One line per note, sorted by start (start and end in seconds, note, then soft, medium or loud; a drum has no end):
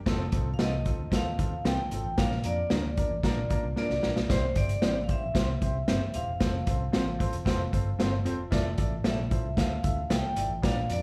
0.06 0.26 F1 medium
0.06 0.20 C4 loud
0.06 0.20 D#4 medium
0.06 0.20 F4 medium
0.06 0.21 A4 loud
0.06 kick loud
0.06 snare loud
0.06 closed hi-hat medium
0.32 0.53 C2 medium
0.32 0.46 C4 medium
0.32 0.46 D#4 medium
0.32 0.46 F4 medium
0.32 0.47 A4 medium
0.32 kick medium
0.32 closed hi-hat medium
0.54 0.60 F5 medium
0.58 0.89 C2 loud
0.58 0.70 F3 medium
0.58 0.72 C4 medium
0.58 0.70 C4 medium
0.58 0.73 D#4 medium
0.58 0.70 D#4 medium
0.58 0.73 F4 medium
0.58 0.73 A4 medium
0.58 0.70 A4 medium
0.58 snare loud
0.58 closed hi-hat medium
0.62 1.10 D#5 medium
0.84 0.99 C4 medium
0.84 0.99 D#4 medium
0.84 0.99 F4 medium
0.84 1.00 A4 medium
0.84 kick medium
0.84 closed hi-hat medium
0.99 1.09 D2 medium
1.11 1.32 D#2 medium
1.11 1.25 C4 medium
1.11 1.25 D#4 medium
1.11 1.26 F4 medium
1.11 1.26 A4 medium
1.11 kick medium
1.11 snare medium
1.11 closed hi-hat medium
1.15 1.68 F5 medium
1.38 1.59 D#2 medium
1.38 1.52 C4 medium
1.38 1.52 D#4 medium
1.38 1.52 F4 medium
1.38 1.53 A4 medium
1.38 kick medium
1.38 closed hi-hat medium
1.65 1.75 C2 medium
1.65 1.75 F3 medium
1.65 1.78 C4 medium
1.65 1.76 C4 medium
1.65 1.79 D#4 medium
1.65 1.76 D#4 medium
1.65 1.79 F4 medium
1.65 1.76 A4 medium
1.65 1.79 A4 medium
1.65 2.20 G5 medium
1.65 snare medium
1.65 closed hi-hat medium
1.91 2.02 G#1 medium
1.91 2.05 C4 medium
1.91 2.05 D#4 medium
1.91 2.06 F4 medium
1.91 2.06 A4 medium
1.91 closed hi-hat medium
2.05 2.15 A1 medium
2.17 2.38 A#1 medium
2.17 2.31 A#3 medium
2.17 2.31 D4 medium
2.17 2.32 F4 medium
2.17 2.32 A#4 medium
2.17 2.46 F5 loud
2.17 kick medium
2.17 snare loud
2.17 closed hi-hat medium
2.31 snare soft
2.44 2.64 F2 medium
2.44 2.58 A#3 medium
2.44 2.58 D4 medium
2.44 2.58 F4 medium
2.44 2.59 A#4 medium
2.44 3.77 D5 medium
2.44 closed hi-hat medium
2.70 3.01 D2 medium
2.70 2.81 A#3 medium
2.70 2.84 A#3 medium
2.70 2.82 D4 medium
2.70 2.85 D4 medium
2.70 2.82 F4 medium
2.70 2.85 F4 medium
2.70 2.82 A#4 medium
2.70 2.85 A#4 medium
2.70 snare loud
2.70 closed hi-hat medium
2.97 3.11 A#3 medium
2.97 3.11 D4 medium
2.97 3.11 F4 medium
2.97 3.12 A#4 medium
2.97 kick medium
2.97 closed hi-hat medium
3.11 3.21 A1 medium
3.23 3.43 A#1 medium
3.23 3.37 A#3 loud
3.23 3.37 D4 medium
3.23 3.38 F4 medium
3.23 3.38 A#4 loud
3.23 kick medium
3.23 snare medium
3.23 closed hi-hat medium
3.49 3.63 A#3 medium
3.49 3.64 D4 medium
3.49 3.64 F4 medium
3.49 3.64 A#4 medium
3.49 muted fingered electric bass stroke soft
3.49 kick medium
3.49 closed hi-hat medium
3.64 3.74 C2 medium
3.76 3.90 A#3 medium
3.76 3.87 A#3 medium
3.76 3.90 D4 medium
3.76 3.88 D4 medium
3.76 3.90 F4 medium
3.76 3.88 F4 medium
3.76 3.91 A#4 medium
3.76 3.88 A#4 medium
3.76 4.32 D5 medium
3.76 snare soft
3.90 4.00 C2 medium
3.90 snare soft
4.03 4.13 A#1 medium
4.03 4.16 A#3 medium
4.03 4.11 A#3 medium
4.03 4.17 D4 medium
4.03 4.12 D4 medium
4.03 4.12 F4 medium
4.03 4.17 F4 medium
4.03 4.12 A#4 medium
4.03 4.17 A#4 medium
4.03 snare medium
4.16 4.27 B1 medium
4.16 snare medium
4.28 4.49 C2 medium
4.28 4.42 C4 medium
4.28 4.43 E4 medium
4.28 4.43 G4 medium
4.28 4.43 C5 loud
4.28 4.58 C5 medium
4.28 kick medium
4.28 snare loud
4.28 closed hi-hat medium
4.55 4.76 G1 medium
4.55 4.69 C4 medium
4.55 4.69 E4 medium
4.55 4.70 G4 medium
4.55 4.70 C5 medium
4.55 4.99 D5 medium
4.55 kick medium
4.55 closed hi-hat medium
4.69 closed hi-hat medium
4.81 5.12 A1 medium
4.81 4.95 C4 medium
4.81 4.93 C4 medium
4.81 4.96 E4 medium
4.81 4.93 E4 medium
4.81 4.96 G4 medium
4.81 4.93 G4 medium
4.81 4.96 C5 medium
4.81 4.93 C5 medium
4.81 snare loud
4.81 closed hi-hat medium
5.04 5.10 F5 medium
5.08 5.22 C4 medium
5.08 5.22 E4 medium
5.08 5.22 G4 medium
5.08 5.23 C5 medium
5.08 5.88 E5 medium
5.08 kick medium
5.08 closed hi-hat medium
5.22 5.32 A#1 medium
5.34 5.55 C2 medium
5.34 5.48 C4 medium
5.34 5.48 E4 medium
5.34 5.49 G4 medium
5.34 5.49 C5 medium
5.34 kick medium
5.34 snare loud
5.34 closed hi-hat medium
5.60 5.81 C2 medium
5.60 5.74 C4 medium
5.60 5.75 E4 medium
5.60 5.75 G4 medium
5.60 5.75 C5 medium
5.60 kick medium
5.60 closed hi-hat medium
5.87 5.98 G1 medium
5.87 6.01 C4 medium
5.87 5.99 C4 medium
5.87 6.02 E4 medium
5.87 5.99 E4 medium
5.87 6.02 G4 medium
5.87 5.99 G4 medium
5.87 5.99 C5 medium
5.87 6.02 C5 medium
5.87 6.16 E5 medium
5.87 snare medium
5.87 closed hi-hat medium
6.14 6.25 D#1 medium
6.14 6.27 C4 medium
6.14 6.28 E4 medium
6.14 6.28 G4 medium
6.14 6.28 C5 medium
6.14 8.22 F5 medium
6.14 closed hi-hat medium
6.28 6.38 E1 medium
6.40 6.61 F1 medium
6.40 6.54 C4 medium
6.40 6.54 F4 medium
6.40 6.54 A4 medium
6.40 6.55 C5 loud
6.40 kick medium
6.40 snare loud
6.40 closed hi-hat medium
6.66 6.87 C2 medium
6.66 6.80 C4 medium
6.66 6.80 F4 medium
6.66 6.81 A4 medium
6.66 6.81 C5 medium
6.66 kick medium
6.66 closed hi-hat medium
6.92 7.24 A1 medium
6.92 7.06 C4 medium
6.92 7.04 C4 medium
6.92 7.06 F4 medium
6.92 7.04 F4 medium
6.92 7.07 A4 medium
6.92 7.04 A4 medium
6.92 7.07 C5 medium
6.92 7.05 C5 medium
6.92 snare loud
6.92 closed hi-hat medium
7.19 7.33 C4 medium
7.19 7.33 F4 medium
7.19 7.33 A4 medium
7.19 7.34 C5 medium
7.19 kick medium
7.19 closed hi-hat medium
7.33 7.43 E1 medium
7.33 closed hi-hat soft
7.45 7.66 F1 medium
7.45 7.59 C4 loud
7.45 7.60 F4 medium
7.45 7.60 A4 medium
7.45 7.60 C5 loud
7.45 kick medium
7.45 snare medium
7.45 closed hi-hat medium
7.72 7.93 G1 medium
7.72 7.86 C4 medium
7.72 7.86 F4 medium
7.72 7.87 A4 medium
7.72 7.87 C5 medium
7.72 kick medium
7.72 closed hi-hat medium
7.99 8.26 G1 medium
7.99 8.10 C4 medium
7.99 8.13 C4 medium
7.99 8.13 F4 medium
7.99 8.10 F4 medium
7.99 8.10 A4 medium
7.99 8.13 A4 medium
7.99 8.10 C5 medium
7.99 8.13 C5 medium
7.99 snare medium
7.99 closed hi-hat medium
8.25 8.46 E1 medium
8.25 8.39 C4 medium
8.25 8.34 C4 medium
8.25 8.34 F4 medium
8.25 8.39 F4 medium
8.25 8.34 A4 medium
8.25 8.40 A4 medium
8.25 8.34 C5 medium
8.25 8.40 C5 medium
8.25 closed hi-hat medium
8.51 8.72 F1 medium
8.51 8.65 E4 loud
8.51 8.65 F4 loud
8.51 8.66 A4 medium
8.51 8.66 D5 loud
8.51 kick loud
8.51 snare loud
8.51 closed hi-hat medium
8.77 8.98 A1 medium
8.77 8.91 E4 medium
8.77 8.92 F4 medium
8.77 8.92 A4 medium
8.77 8.92 D5 medium
8.77 kick medium
8.77 closed hi-hat medium
9.04 9.34 A#1 medium
9.04 9.15 F3 medium
9.04 9.15 A3 medium
9.04 9.18 E4 medium
9.04 9.16 E4 medium
9.04 9.19 F4 medium
9.04 9.19 A4 medium
9.04 9.16 A4 medium
9.04 9.19 D5 medium
9.04 9.60 E5 medium
9.04 snare loud
9.04 closed hi-hat medium
9.30 9.44 E4 medium
9.30 9.45 F4 medium
9.30 9.45 A4 medium
9.30 9.45 C5 medium
9.30 kick medium
9.30 closed hi-hat medium
9.45 9.54 C2 medium
9.57 9.77 D2 medium
9.57 9.71 E4 medium
9.57 9.71 F4 medium
9.57 9.71 A4 medium
9.57 9.71 F5 medium
9.57 10.13 F5 medium
9.57 kick medium
9.57 snare medium
9.57 closed hi-hat medium
9.83 10.04 D2 medium
9.83 9.97 E4 medium
9.83 9.97 F4 medium
9.83 9.97 A4 medium
9.83 9.98 E5 medium
9.83 kick medium
9.83 closed hi-hat medium
10.09 10.20 C2 medium
10.09 10.21 F3 medium
10.09 10.21 A3 medium
10.09 10.24 E4 medium
10.09 10.22 E4 medium
10.09 10.24 F4 medium
10.09 10.24 A4 medium
10.09 10.22 A4 medium
10.09 10.24 F5 medium
10.09 10.66 G5 loud
10.09 snare loud
10.09 closed hi-hat medium
10.36 10.47 G#1 medium
10.36 10.50 E4 medium
10.36 10.50 F4 medium
10.36 10.50 A4 medium
10.36 10.51 D5 medium
10.36 closed hi-hat medium
10.50 10.60 A1 medium
10.62 10.83 A#1 medium
10.62 10.76 D4 medium
10.62 10.77 F4 medium
10.62 10.77 A#4 medium
10.62 10.77 D5 medium
10.62 10.89 F5 medium
10.62 kick loud
10.62 snare loud
10.62 closed hi-hat medium
10.89 11.02 F2 medium
10.89 11.02 D4 medium
10.89 11.02 F4 medium
10.89 11.02 A#4 medium
10.89 11.02 D5 medium
10.89 closed hi-hat medium